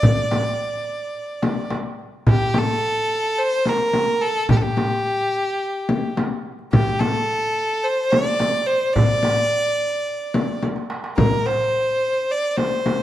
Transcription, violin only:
0, 0, Header, 1, 2, 480
1, 0, Start_track
1, 0, Tempo, 557621
1, 28, Time_signature, 4, 2, 24, 8
1, 11214, End_track
2, 0, Start_track
2, 0, Title_t, "Violin"
2, 0, Program_c, 0, 40
2, 0, Note_on_c, 0, 74, 85
2, 1477, Note_off_c, 0, 74, 0
2, 1968, Note_on_c, 0, 67, 81
2, 2216, Note_on_c, 0, 69, 92
2, 2228, Note_off_c, 0, 67, 0
2, 2918, Note_on_c, 0, 72, 97
2, 2931, Note_off_c, 0, 69, 0
2, 3174, Note_on_c, 0, 70, 91
2, 3187, Note_off_c, 0, 72, 0
2, 3635, Note_on_c, 0, 69, 90
2, 3648, Note_off_c, 0, 70, 0
2, 3871, Note_off_c, 0, 69, 0
2, 3879, Note_on_c, 0, 67, 74
2, 3929, Note_on_c, 0, 69, 59
2, 3942, Note_off_c, 0, 67, 0
2, 3973, Note_on_c, 0, 67, 84
2, 3986, Note_off_c, 0, 69, 0
2, 5299, Note_off_c, 0, 67, 0
2, 5790, Note_on_c, 0, 67, 82
2, 6025, Note_on_c, 0, 69, 93
2, 6038, Note_off_c, 0, 67, 0
2, 6749, Note_on_c, 0, 72, 92
2, 6761, Note_off_c, 0, 69, 0
2, 6979, Note_on_c, 0, 74, 98
2, 6991, Note_off_c, 0, 72, 0
2, 7458, Note_on_c, 0, 72, 93
2, 7471, Note_off_c, 0, 74, 0
2, 7691, Note_on_c, 0, 74, 97
2, 7704, Note_off_c, 0, 72, 0
2, 9140, Note_off_c, 0, 74, 0
2, 9613, Note_on_c, 0, 70, 83
2, 9863, Note_on_c, 0, 72, 88
2, 9876, Note_off_c, 0, 70, 0
2, 10595, Note_on_c, 0, 74, 86
2, 10608, Note_off_c, 0, 72, 0
2, 10766, Note_off_c, 0, 74, 0
2, 10766, Note_on_c, 0, 74, 65
2, 10818, Note_on_c, 0, 72, 87
2, 10831, Note_off_c, 0, 74, 0
2, 11214, Note_off_c, 0, 72, 0
2, 11214, End_track
0, 0, End_of_file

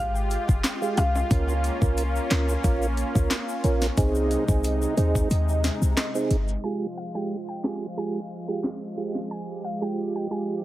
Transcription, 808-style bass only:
0, 0, Header, 1, 2, 480
1, 0, Start_track
1, 0, Key_signature, -4, "minor"
1, 0, Tempo, 666667
1, 943, Time_signature, 4, 2, 24, 8
1, 7667, End_track
2, 0, Start_track
2, 0, Title_t, "808-style bass"
2, 0, Program_c, 0, 38
2, 0, Note_on_c, 0, 32, 105
2, 262, Note_off_c, 0, 32, 0
2, 352, Note_on_c, 0, 29, 92
2, 437, Note_off_c, 0, 29, 0
2, 702, Note_on_c, 0, 36, 90
2, 885, Note_off_c, 0, 36, 0
2, 942, Note_on_c, 0, 37, 115
2, 1221, Note_off_c, 0, 37, 0
2, 1308, Note_on_c, 0, 36, 96
2, 1577, Note_off_c, 0, 36, 0
2, 1662, Note_on_c, 0, 37, 93
2, 1845, Note_off_c, 0, 37, 0
2, 1903, Note_on_c, 0, 34, 103
2, 2182, Note_off_c, 0, 34, 0
2, 2272, Note_on_c, 0, 37, 98
2, 2357, Note_off_c, 0, 37, 0
2, 2622, Note_on_c, 0, 34, 91
2, 2805, Note_off_c, 0, 34, 0
2, 2862, Note_on_c, 0, 36, 101
2, 3141, Note_off_c, 0, 36, 0
2, 3229, Note_on_c, 0, 36, 95
2, 3497, Note_off_c, 0, 36, 0
2, 3582, Note_on_c, 0, 39, 109
2, 3764, Note_off_c, 0, 39, 0
2, 3822, Note_on_c, 0, 39, 104
2, 4101, Note_off_c, 0, 39, 0
2, 4189, Note_on_c, 0, 36, 92
2, 4275, Note_off_c, 0, 36, 0
2, 4541, Note_on_c, 0, 31, 95
2, 4724, Note_off_c, 0, 31, 0
2, 7667, End_track
0, 0, End_of_file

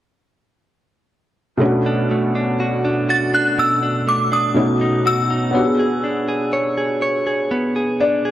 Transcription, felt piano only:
0, 0, Header, 1, 2, 480
1, 0, Start_track
1, 0, Tempo, 983607
1, 787, Time_signature, 4, 2, 24, 8
1, 4055, End_track
2, 0, Start_track
2, 0, Title_t, "Felt piano"
2, 0, Program_c, 0, 0
2, 768, Note_on_c, 0, 47, 71
2, 778, Note_on_c, 0, 57, 65
2, 787, Note_on_c, 0, 61, 66
2, 796, Note_on_c, 0, 62, 67
2, 806, Note_on_c, 0, 66, 79
2, 874, Control_c, 0, 64, 127
2, 2198, Note_off_c, 0, 47, 0
2, 2203, Note_off_c, 0, 57, 0
2, 2208, Note_off_c, 0, 61, 0
2, 2212, Note_off_c, 0, 62, 0
2, 2217, Note_off_c, 0, 66, 0
2, 2217, Note_on_c, 0, 47, 62
2, 2221, Note_on_c, 0, 57, 56
2, 2226, Note_on_c, 0, 61, 58
2, 2232, Note_on_c, 0, 63, 57
2, 2233, Control_c, 0, 64, 0
2, 2236, Note_on_c, 0, 66, 69
2, 2315, Control_c, 0, 64, 127
2, 2687, Note_on_c, 0, 59, 60
2, 2697, Note_on_c, 0, 73, 55
2, 2702, Note_off_c, 0, 47, 0
2, 2704, Note_off_c, 0, 57, 0
2, 2706, Note_on_c, 0, 62, 56
2, 2707, Note_off_c, 0, 61, 0
2, 2708, Note_off_c, 0, 66, 0
2, 2709, Note_off_c, 0, 63, 0
2, 2713, Control_c, 0, 64, 0
2, 2715, Note_on_c, 0, 66, 57
2, 2725, Note_on_c, 0, 67, 51
2, 2748, Note_off_c, 0, 67, 0
2, 2757, Note_on_c, 0, 68, 67
2, 2785, Control_c, 0, 64, 127
2, 3907, Note_on_c, 0, 74, 65
2, 4055, Note_off_c, 0, 59, 0
2, 4055, Note_off_c, 0, 62, 0
2, 4055, Note_off_c, 0, 66, 0
2, 4055, Note_off_c, 0, 68, 0
2, 4055, Note_off_c, 0, 73, 0
2, 4055, Note_off_c, 0, 74, 0
2, 4055, End_track
0, 0, End_of_file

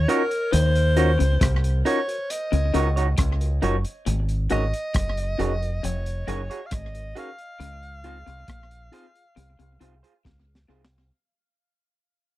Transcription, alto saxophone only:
0, 0, Header, 1, 2, 480
1, 0, Start_track
1, 0, Tempo, 883652
1, 287, Time_signature, 4, 2, 24, 8
1, 6722, End_track
2, 0, Start_track
2, 0, Title_t, "Alto saxophone"
2, 0, Program_c, 0, 65
2, 0, Note_on_c, 0, 73, 103
2, 50, Note_on_c, 0, 70, 86
2, 58, Note_off_c, 0, 73, 0
2, 285, Note_on_c, 0, 72, 105
2, 293, Note_off_c, 0, 70, 0
2, 861, Note_off_c, 0, 72, 0
2, 1010, Note_on_c, 0, 73, 87
2, 1252, Note_on_c, 0, 75, 86
2, 1260, Note_off_c, 0, 73, 0
2, 1730, Note_off_c, 0, 75, 0
2, 2453, Note_on_c, 0, 75, 104
2, 3176, Note_on_c, 0, 73, 85
2, 3184, Note_off_c, 0, 75, 0
2, 3620, Note_on_c, 0, 77, 73
2, 3628, Note_off_c, 0, 73, 0
2, 3660, Note_on_c, 0, 75, 100
2, 3668, Note_off_c, 0, 77, 0
2, 3903, Note_on_c, 0, 77, 106
2, 3911, Note_off_c, 0, 75, 0
2, 5574, Note_off_c, 0, 77, 0
2, 6722, End_track
0, 0, End_of_file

